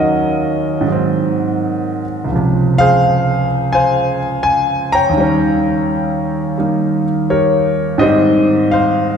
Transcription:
Already playing: D#2 D#3 F#3 C#4 F#4 A#4 D#5
0.81 G#2 D#3
0.88 F#3 C4
2.24 C#2 C#3
2.32 C3 F3
2.78 G#4 C5 F5
3.73 C5 F5 G#5
4.43 G#5
4.92 C#5 G5 A#5
5.09 D#2 D#3
5.17 G3 C#4
6.57 G3 A#3 D#4
7.30 G4 A#4 C#5
7.98 G#2 D#3 G3 G4 C5 D#5
8.03 C4
8.71 C5 F5

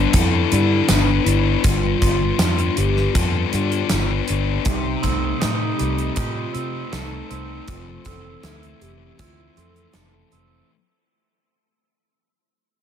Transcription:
Already playing: G2 B3 D4
0.13 F2 E4 A4, kick, closed hi-hat
0.52 G2 D4 E4, closed hi-hat
0.87 G1 B3 D4, snare, closed hi-hat, tambourine
1.24 G1 E4, closed hi-hat
1.28 D4
1.62 G1 G2 F4, kick, closed hi-hat
2.01 G1 B3 F4, kick, closed hi-hat
2.39 F2 D4, snare, closed hi-hat, tambourine
2.59 closed hi-hat
2.77 G1 B3 G4, closed hi-hat
2.96 snare
3.14 F2 F4 A4, kick, closed hi-hat
3.53 G2 D4 F4, closed hi-hat
3.72 closed hi-hat
3.89 G1 B3, snare, closed hi-hat, tambourine
4.28 G1 D4, closed hi-hat
4.65 C2 C3 D#4, kick, closed hi-hat
5.02 C2 A3 C4, kick, closed hi-hat
5.40 A2 C4 D#4, snare, closed hi-hat, tambourine
5.78 C2 G3 A3, closed hi-hat
5.98 closed hi-hat
6.16 A2 D#4 F4 G4, kick, closed hi-hat
6.54 C3 C4, closed hi-hat
6.92 C2 A3 D#4 A4, snare, closed hi-hat, tambourine
7.30 C2 C4, closed hi-hat
7.67 F1 F2 F4, kick, closed hi-hat
8.05 F1 E3 C4 A4, kick, closed hi-hat
8.43 D2 A3 E4, snare, closed hi-hat, tambourine
8.63 closed hi-hat
8.81 F1 E3 G4, closed hi-hat
9.19 D2 C4 E4 F4, kick, closed hi-hat
9.57 F2 A3 C4 A4, closed hi-hat
9.76 closed hi-hat
9.93 F1 E3 A4, snare, closed hi-hat, tambourine
10.32 F1 A3 C4, closed hi-hat

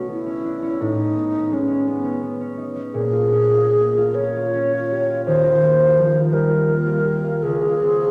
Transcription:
Already playing: B1 A3 C#4
0.08 B3 E4
0.26 C#4
0.44 D4
0.62 C#4
0.81 A2 D#4
0.98 C#4
1.14 B3
1.32 C#4
1.52 G#3 C#4
1.68 C#4
1.87 B3
2.04 C#4
2.23 B3
2.41 C#4
2.58 D#4
2.76 C#4
2.94 A#2 G#4
3.12 F4
3.32 C#4
3.54 F4
3.75 A#3
3.98 F4
4.15 C#4 C#5
4.36 F4
4.55 C#4
4.73 F4
4.92 G4
5.10 F4
5.25 D#2 C5
5.45 F4
5.62 A#3
5.80 F4
5.98 F3
6.15 F4
6.32 G3 A#4
6.50 F4
6.69 A#3
6.87 F4
7.05 G4
7.24 F4
7.43 C#2 G#4
7.62 F4
7.82 C4
8.01 F4

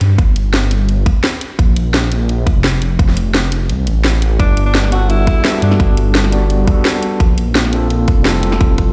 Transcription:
0.01 G2, closed hi-hat
0.18 G1, kick, closed hi-hat
0.36 closed hi-hat
0.54 snare, closed hi-hat
0.71 closed hi-hat
0.89 closed hi-hat
1.06 kick, closed hi-hat
1.24 snare, closed hi-hat
1.41 closed hi-hat
1.59 A#1, kick, closed hi-hat
1.76 closed hi-hat
1.94 snare, closed hi-hat
2.12 closed hi-hat
2.29 closed hi-hat
2.47 kick, closed hi-hat
2.56 F1
2.64 snare, closed hi-hat
2.82 F1, closed hi-hat
2.99 F1, kick, closed hi-hat
3.09 snare
3.17 closed hi-hat
3.34 snare, closed hi-hat
3.52 closed hi-hat
3.69 C2, closed hi-hat
3.87 A1, closed hi-hat
4.04 snare, closed hi-hat
4.22 closed hi-hat
4.39 G1 D4, kick, closed hi-hat
4.57 closed hi-hat
4.66 D4
4.75 snare, closed hi-hat
4.84 snare
4.89 G3 B3 D4 F#4, closed hi-hat
4.94 F#4 A4
5.10 E4, closed hi-hat
5.27 kick, closed hi-hat
5.42 G3 B3 D4, snare, closed hi-hat
5.46 F#4 A4
5.62 G2 D4, closed hi-hat
5.71 snare
5.80 G1, kick, closed hi-hat
5.97 closed hi-hat
6.15 snare, closed hi-hat
6.24 snare
6.31 G3 B3 D4 F#4 D5, closed hi-hat
6.50 closed hi-hat
6.65 G3 B3 D4, kick, closed hi-hat
6.69 F#4 A4
6.85 snare, closed hi-hat
7.03 closed hi-hat
7.20 A#1, kick, closed hi-hat
7.38 closed hi-hat
7.55 snare, closed hi-hat
7.64 snare
7.70 A#3 C4 D4, closed hi-hat
7.74 F4 A4
7.90 closed hi-hat
8.08 kick, closed hi-hat
8.17 F1
8.23 G3 C4 E4, snare, closed hi-hat
8.27 F4 A4
8.43 F1, closed hi-hat
8.52 snare
8.61 F1, kick, closed hi-hat
8.78 kick, closed hi-hat

